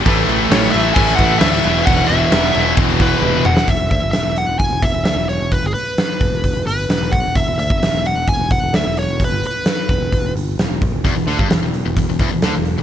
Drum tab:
CC |x-x-x-x-x-x-x-x-|x-x-x-x-x-x-----|----------------|----------------|
HH |----------------|----------------|o-o-o-o-o-o-o-o-|o-o-o-o-o-o-o-o-|
SD |----o-------o---|----o----------o|----o-------o---|----o-------o---|
T1 |----------------|------------o---|----------------|----------------|
T2 |----------------|--------------o-|----------------|----------------|
BD |o-------o-o-----|o-------o-o-----|o-o-----o-o-----|o-----o-o-----o-|

CC |----------------|----------------|----------------|
HH |o-o-o-o-o-o-o-o-|o-o-o-o-o-o-o-o-|o-o-o-o-o-o-o-o-|
SD |----o-------o---|----o-------o---|----o-------o---|
T1 |----------------|----------------|----------------|
T2 |----------------|----------------|----------------|
BD |o--o----o-o-----|o-----o-o-----o-|o--o----o-o-----|